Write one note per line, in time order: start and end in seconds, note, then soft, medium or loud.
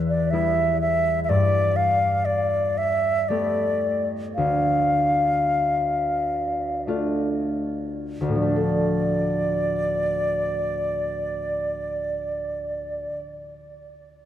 0.00 1.34 E2 soft
0.00 0.70 A3 soft
0.00 0.18 D4 soft
0.09 0.32 D5 medium
0.30 1.34 G3 soft
0.30 3.30 B3 soft
0.30 2.95 E4 soft
0.30 0.80 E5 medium
0.81 1.20 E5 medium
1.24 1.31 E5 medium
1.29 4.41 G2 soft
1.29 1.78 D5 medium
1.76 2.27 F5 medium
2.25 2.79 D5 medium
2.77 3.30 E5 medium
3.28 6.62 A3 soft
3.28 6.41 B3 soft
3.28 5.66 G4 soft
3.28 4.07 D5 medium
4.35 8.20 D2 soft
4.35 6.82 F5 medium
6.87 8.42 A3 soft
6.87 8.48 D4 soft
6.87 9.40 F4 soft
8.21 13.03 D2 soft
8.28 13.11 A2 soft
8.35 13.18 F3 soft
8.35 13.19 D5 medium
8.42 13.25 A3 soft
8.49 13.31 D4 soft
8.56 13.38 A4 soft